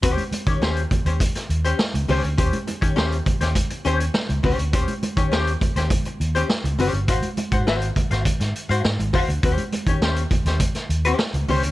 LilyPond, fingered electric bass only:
\new Staff \with { instrumentName = "Fingered electric bass" } { \clef bass \time 4/4 \key ees \mixolydian \tempo 4 = 102 ees,16 r8 ees16 ees,8 r16 ees,16 r8 ees,8 r16 des,16 des,16 d,16 | ees,16 r8 ees16 ees,8 r16 ees,16 r8 ees,8 r16 des,16 des,16 d,16 | ees,16 r8 ees16 ees,8 r16 ees,16 r8 ees,8 r16 des,16 ges,,16 g,,16 | aes,,16 r8 aes,16 aes,,8 r16 aes,,16 r16 aes,16 r16 aes,16 aes,16 aes,,16 r16 d,16 |
ees,16 r8 ees16 ees,8 r16 ees,16 r8 ees,8 r16 des,16 des,16 d,16 | }